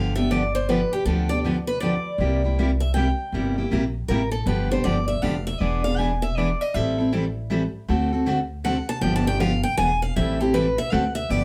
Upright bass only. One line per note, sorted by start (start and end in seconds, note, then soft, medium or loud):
0.00 0.82 G1 medium
1.05 1.96 D2 medium
2.18 3.10 C2 medium
3.32 3.63 G1 medium
3.71 4.03 A#1 medium
4.08 4.41 A1 medium
4.46 4.77 G1 loud
4.85 5.17 G1 medium
5.22 5.55 F1 medium
5.60 6.51 E1 medium
6.74 7.65 A1 loud
7.88 8.79 D2 loud
9.01 9.62 G1 loud
9.78 10.08 E1 medium
10.16 10.77 A1 loud
10.92 11.22 D2 medium
11.29 11.44 G1 medium